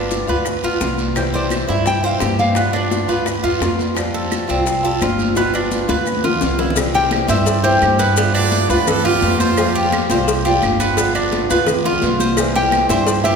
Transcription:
Already playing: G1 G3 B3 D4 F4
0.11 high bongo, high conga, short guiro, maracas
0.27 D2 B3 F4 B4, high bongo, high conga, short guiro, maracas
0.45 muted steel-string acoustic guitar stroke, high bongo, long guiro, claves, maracas
0.63 D2 B3 F4, high bongo, high conga, maracas
0.81 C2 G3 B3 F4, high bongo, low bongo, high conga, short guiro, maracas
0.98 high conga, short guiro, maracas
1.15 C3 E3 G3 C4 E4 C5, high bongo, high conga, long guiro, claves, maracas
1.33 C5 D5, high conga, maracas
1.50 high bongo, high conga, short guiro, claves, maracas
1.67 G2 E3 G3 C4 E4 E5, high conga, short guiro, maracas
1.86 G5, muted steel-string acoustic guitar stroke, high bongo, long guiro, maracas
2.03 E3 G3 C4 E4 C5 F5, high conga, maracas
2.20 G2 E3 G3 C4 E4 G4 E5, high bongo, low bongo, high conga, short guiro, claves, maracas
2.39 F5, high conga, short guiro, maracas
2.55 G3 B3 F4, high bongo, long guiro, maracas
2.73 D4 D5, high bongo, high conga, claves, maracas
2.91 high bongo, high conga, short guiro, maracas
3.08 D2 B3 F4 B4, high bongo, high conga, short guiro, maracas
3.26 muted steel-string acoustic guitar stroke, high bongo, high conga, long guiro, claves, maracas
3.43 E2 B3 F4, high bongo, high conga, maracas
3.60 F2 G3 B3 F4, high bongo, low bongo, high conga, short guiro, maracas
3.79 high conga, short guiro, maracas
3.95 F3 G3 C4 F4, high bongo, high conga, long guiro, claves, maracas
4.14 A4, high conga, maracas
4.32 high bongo, high conga, short guiro, claves, maracas
4.48 C2 G3 C4 F4, high conga, short guiro, maracas
4.66 muted steel-string acoustic guitar stroke, high bongo, high conga, long guiro, maracas
4.83 G3 C4 F4 A4, high conga, maracas
5.00 G1 F3 G3 C4 F4, high bongo, low bongo, high conga, short guiro, claves, maracas
5.19 high conga, short guiro, maracas
5.35 G3 B3 F4, high bongo, high conga, long guiro, maracas
5.54 D4, high bongo, high conga, claves, maracas
5.71 high conga, short guiro, maracas
5.88 D2 B3 F4 B4, low bongo, high conga, short guiro, maracas
6.01 high conga
6.05 muted steel-string acoustic guitar stroke, long guiro, claves, maracas
6.12 high conga
6.24 B3 F4, low bongo, low conga, maracas
6.35 low conga
6.41 C2 G3 B3 F4, low bongo, short guiro, maracas
6.59 E4, low bongo, low conga, short guiro, maracas
6.70 low conga
6.76 C3 E3 G3 C4 E4, cowbell, high conga, long guiro, claves, maracas
6.95 G4 G5, high conga, maracas
7.11 cowbell, high conga, short guiro, claves, maracas
7.27 G2 E3 G3 C4 E4 C5 E5, cowbell, high conga, short guiro, maracas
7.45 D5, muted steel-string acoustic guitar stroke, cowbell, high conga, long guiro, maracas
7.64 E3 G3 C4 E4 G4 C5, high conga, maracas
7.81 G2 E3 G3 C4 E4, cowbell, high conga, short guiro, claves, maracas
7.99 B3 B4, high conga, short guiro, maracas
8.16 G3 B3 F4, cowbell, high conga, long guiro, maracas
8.34 D4 D5, high conga, claves, maracas
8.52 cowbell, high conga, short guiro, maracas
8.69 D2 B3 F4 B4, high conga, short guiro, maracas
8.87 A4, muted steel-string acoustic guitar stroke, cowbell, high conga, low conga, long guiro, claves, maracas
9.04 B3 F4 G4, high conga, low conga, maracas
9.22 F2 G3 B3 F4, cowbell, high conga, short guiro, maracas
9.40 F4 C5, high conga, short guiro, maracas
9.57 F3 G3 C4 F4, cowbell, high conga, long guiro, claves, maracas
9.75 G4, high conga, maracas
9.92 cowbell, high conga, short guiro, claves, maracas
10.10 C2 G3 C4 F4 C5, cowbell, high conga, short guiro, maracas
10.28 muted steel-string acoustic guitar stroke, cowbell, high conga, long guiro, maracas
10.45 G3 C4 F4 G4, high conga, maracas
10.62 G1 F3 G3 C4 F4, cowbell, high conga, short guiro, claves, maracas
10.80 B3, high conga, short guiro, maracas
10.97 G3 B3 F4, cowbell, high conga, long guiro, maracas
11.15 D4, high conga, claves, maracas
11.32 cowbell, high conga, short guiro, maracas
11.50 D2 B3 F4 B4, high conga, short guiro, maracas
11.67 muted steel-string acoustic guitar stroke, cowbell, high conga, low conga, long guiro, claves, maracas
11.84 B3 F4, high conga, low conga, maracas
12.02 C2 G3 B3 F4, cowbell, high conga, short guiro, maracas
12.19 C5, high conga, short guiro, maracas
12.37 C3 E3 G3 C4 E4, cowbell, high conga, long guiro, claves, maracas
12.54 G4 G5, high conga, maracas
12.72 cowbell, high conga, short guiro, claves, maracas
12.89 G2 E3 G3 C4 E4 C5 E5, cowbell, high conga, short guiro, maracas
13.06 D5, muted steel-string acoustic guitar stroke, cowbell, high conga, long guiro, maracas
13.24 E3 G3 C4 E4 G4 E5, high conga, maracas

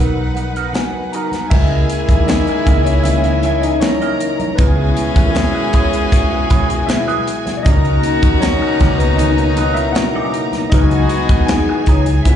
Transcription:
Already playing: B1 F#3 B3 D#4 A#4 B4 F#5
0.00 D#4 F#4 A#4
0.35 F#5, muted clean electric guitar stroke, closed hi-hat, muted conga
0.56 D#4 F#4 A#4, closed hi-hat
0.73 F#4 F#5 G#5, muted clean electric guitar stroke, snare, closed hi-hat, high conga
1.12 D#4 F#4 A#4 A#5, closed hi-hat
1.32 muted clean electric guitar stroke, snare, closed hi-hat, high conga
1.50 C#2 C#3 E3 G#3 A#3 C#4 E4 G#4 A#4 D#5 E5 G#5, kick, crash, muted conga
1.90 closed hi-hat
2.09 D#2, muted clean electric guitar stroke, kick, closed hi-hat
2.27 D#4 D#5, snare, closed hi-hat, high conga
2.47 muted clean electric guitar stroke, closed hi-hat
2.66 C#2 E3 A#3 E4 A#4 D#5 E5, kick, closed hi-hat, low conga
2.85 C#4 C#5, muted clean electric guitar stroke, closed hi-hat
3.03 E4 E5, muted clean electric guitar stroke, closed hi-hat, muted conga, low conga
3.24 muted clean electric guitar stroke, closed hi-hat
3.43 E4 A#4 E5, closed hi-hat, muted conga
3.61 D#4 D#5, muted clean electric guitar stroke, closed hi-hat
3.80 C#4 A#4 C#5 A#5, muted clean electric guitar stroke, snare, closed hi-hat, high conga
4.01 E4 A#4 D#5, closed hi-hat
4.20 muted clean electric guitar stroke, closed hi-hat
4.40 muted clean electric guitar stroke, closed hi-hat, high conga
4.55 C#2 B2 G#3 B3 C#4 E4 F#4 G#4 B4 G#5, kick, closed hi-hat, muted conga
4.60 G#4 B4
4.96 closed hi-hat, muted conga
5.16 D#2, muted clean electric guitar stroke, kick, closed hi-hat
5.26 A#4
5.32 G#3 G#4, closed hi-hat, high conga
5.36 snare
5.55 muted clean electric guitar stroke
5.73 E4 G#4 C#5, kick, closed hi-hat
5.93 muted clean electric guitar stroke, closed hi-hat
6.12 muted clean electric guitar stroke, kick, closed hi-hat, muted conga
6.31 muted clean electric guitar stroke
6.50 E4 G#4 C#5, kick, closed hi-hat, muted conga, low conga
6.70 muted clean electric guitar stroke, closed hi-hat
6.87 E4 E5, muted clean electric guitar stroke, snare, closed hi-hat, high conga
7.08 E4 G#4 B4, closed hi-hat
7.27 muted clean electric guitar stroke, closed hi-hat
7.46 muted clean electric guitar stroke, snare, closed hi-hat, high conga
7.57 D5
7.63 C#2 C#3 A#3 C#4 D#4 F#4 A#4 D#5 A#5, kick, closed hi-hat, muted conga
7.85 closed hi-hat
8.03 closed hi-hat
8.23 D#2, muted clean electric guitar stroke, kick, closed hi-hat
8.41 C#4 C#5, snare, closed hi-hat, high conga
8.62 muted clean electric guitar stroke
8.80 C#2 C#4 D#4 B4, kick, snare, closed hi-hat, low conga
8.98 B3 B4, muted clean electric guitar stroke, closed hi-hat
9.17 D#4 D#5, muted clean electric guitar stroke, closed hi-hat, muted conga, low conga
9.38 muted clean electric guitar stroke, closed hi-hat
9.57 C#4 D#4 B4, closed hi-hat, muted conga
9.74 E4 E5, muted clean electric guitar stroke, closed hi-hat
9.92 F#4 F#5, muted clean electric guitar stroke, snare, closed hi-hat, high conga
10.15 C#4 D#4 A#4
10.34 muted clean electric guitar stroke, closed hi-hat
10.53 muted clean electric guitar stroke, snare, closed hi-hat, high conga
10.70 C#2 E3 F#3 G#3 B3 D#4 F#4 G#4 D#5 G#5, kick, closed hi-hat, muted conga
10.74 B4
10.91 closed hi-hat
11.09 closed hi-hat, muted conga
11.29 D#2, muted clean electric guitar stroke, kick, closed hi-hat
11.46 G#4 G#5, snare, closed hi-hat, high conga
11.69 muted clean electric guitar stroke
11.86 C#2 D#4 G#4 C#5, kick, closed hi-hat
12.06 muted clean electric guitar stroke, closed hi-hat
12.25 C#2 C#3 E3 B3 C#4 E4 E5, muted clean electric guitar stroke, kick, closed hi-hat, muted conga

